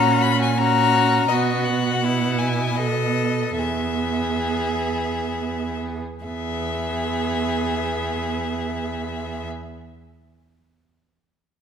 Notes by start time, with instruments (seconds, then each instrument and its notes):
Already playing: cello A#2, viola C#4, violin F#4 A#5
0.22 violin B5
0.42 violin G#5
0.58 viola C#4, violin F#4 A#5
1.29 cello B2, viola B3, violin F#4 D#5
1.65 violin F#5
2.00 viola B3, violin E4
2.39 violin G#5
2.76 viola B3, violin A4 D#5
3.57 cello E2, viola B3, violin G#4 E5
6.25 cello E2, viola B3, violin G#4 E5